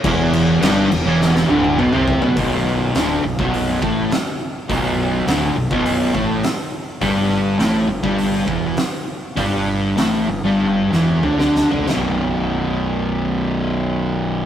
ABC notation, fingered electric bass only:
X:1
M:4/4
L:1/16
Q:1/4=103
K:Bm
V:1 name="Fingered electric bass" clef=bass
E,,,4 G,,,2 E,,, E,,,3 D,,,2 B,,, =C,,2 B,,, | B,,,,4 D,,,2 B,,,, B,,,,3 A,,,2 z4 | B,,,,4 D,,,2 B,,,, B,,,,3 A,,,2 z4 | G,,,4 A,,,2 G,,, G,,,3 E,,,2 z4 |
G,,,4 A,,,2 G,,, G,,,3 E,,,2 D,, D,,2 D,, | B,,,,16 |]